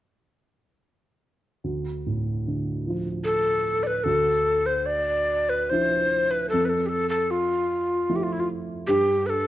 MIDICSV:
0, 0, Header, 1, 3, 480
1, 0, Start_track
1, 0, Tempo, 841515
1, 934, Time_signature, 3, 2, 24, 8
1, 1407, Tempo, 795756
1, 2367, Tempo, 820793
1, 3807, Tempo, 781250
1, 5619, End_track
2, 0, Start_track
2, 0, Title_t, "Tin whistle"
2, 0, Program_c, 0, 75
2, 1876, Note_on_c, 0, 69, 79
2, 2230, Note_on_c, 0, 74, 64
2, 2239, Note_off_c, 0, 69, 0
2, 2253, Note_on_c, 0, 71, 70
2, 2259, Note_off_c, 0, 74, 0
2, 2354, Note_on_c, 0, 69, 77
2, 2363, Note_off_c, 0, 71, 0
2, 2719, Note_on_c, 0, 72, 77
2, 2728, Note_off_c, 0, 69, 0
2, 2836, Note_on_c, 0, 74, 73
2, 2844, Note_off_c, 0, 72, 0
2, 3206, Note_on_c, 0, 71, 69
2, 3215, Note_off_c, 0, 74, 0
2, 3325, Note_on_c, 0, 72, 84
2, 3334, Note_off_c, 0, 71, 0
2, 3682, Note_on_c, 0, 71, 73
2, 3690, Note_off_c, 0, 72, 0
2, 3787, Note_off_c, 0, 71, 0
2, 3791, Note_on_c, 0, 69, 74
2, 3886, Note_on_c, 0, 71, 51
2, 3896, Note_off_c, 0, 69, 0
2, 3912, Note_on_c, 0, 69, 69
2, 3921, Note_off_c, 0, 71, 0
2, 4015, Note_on_c, 0, 67, 46
2, 4024, Note_off_c, 0, 69, 0
2, 4032, Note_on_c, 0, 69, 78
2, 4041, Note_off_c, 0, 67, 0
2, 4156, Note_off_c, 0, 69, 0
2, 4159, Note_on_c, 0, 69, 74
2, 4290, Note_on_c, 0, 65, 62
2, 4299, Note_off_c, 0, 69, 0
2, 4812, Note_on_c, 0, 67, 55
2, 4822, Note_off_c, 0, 65, 0
2, 4858, Note_on_c, 0, 65, 53
2, 4868, Note_off_c, 0, 67, 0
2, 4916, Note_on_c, 0, 64, 55
2, 4925, Note_off_c, 0, 65, 0
2, 4961, Note_on_c, 0, 65, 54
2, 4970, Note_off_c, 0, 64, 0
2, 5014, Note_off_c, 0, 65, 0
2, 5252, Note_on_c, 0, 67, 78
2, 5492, Note_on_c, 0, 71, 75
2, 5501, Note_off_c, 0, 67, 0
2, 5511, Note_on_c, 0, 69, 81
2, 5518, Note_off_c, 0, 71, 0
2, 5619, Note_off_c, 0, 69, 0
2, 5619, End_track
3, 0, Start_track
3, 0, Title_t, "Upright piano"
3, 0, Program_c, 1, 0
3, 936, Note_on_c, 1, 38, 41
3, 1042, Control_c, 1, 64, 127
3, 1177, Note_on_c, 1, 45, 36
3, 1411, Note_on_c, 1, 50, 39
3, 1651, Note_on_c, 1, 53, 39
3, 2100, Note_off_c, 1, 45, 0
3, 2345, Note_off_c, 1, 38, 0
3, 2346, Note_off_c, 1, 50, 0
3, 2347, Note_off_c, 1, 53, 0
3, 2364, Note_on_c, 1, 38, 54
3, 2376, Control_c, 1, 64, 0
3, 2495, Control_c, 1, 64, 127
3, 3334, Note_on_c, 1, 53, 39
3, 3338, Note_on_c, 1, 62, 36
3, 3343, Note_on_c, 1, 64, 40
3, 3783, Note_off_c, 1, 38, 0
3, 3794, Note_off_c, 1, 53, 0
3, 3796, Note_off_c, 1, 62, 0
3, 3798, Note_off_c, 1, 64, 0
3, 3812, Note_on_c, 1, 41, 52
3, 3816, Control_c, 1, 64, 0
3, 3943, Control_c, 1, 64, 127
3, 4774, Note_on_c, 1, 53, 39
3, 4775, Note_on_c, 1, 57, 35
3, 4777, Note_on_c, 1, 64, 40
3, 5230, Note_off_c, 1, 41, 0
3, 5237, Note_off_c, 1, 53, 0
3, 5237, Note_off_c, 1, 57, 0
3, 5238, Note_off_c, 1, 64, 0
3, 5258, Note_on_c, 1, 43, 59
3, 5259, Control_c, 1, 64, 0
3, 5377, Control_c, 1, 64, 127
3, 5619, Note_off_c, 1, 43, 0
3, 5619, End_track
0, 0, End_of_file